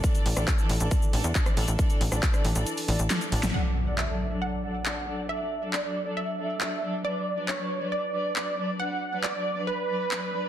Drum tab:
HH |xxoxx-oxx-oxxxox|xxoxxxoxxooxxxox|----------------|----------------|
SH |xx-xxx-xxx-xxx-x|xx-xxx-xxx-xxx-x|----------------|----------------|
CP |----x-------x---|----x-------x---|----x-------x---|----x-------x---|
SD |---r---------r--|---r-r------o--o|----------------|----------------|
BD |o---o---o---o---|o---o-----------|----------------|----------------|

HH |----------------|----------------|
SH |----------------|----------------|
CP |----x-------x---|----x-------x---|
SD |----------------|----------------|
BD |----------------|----------------|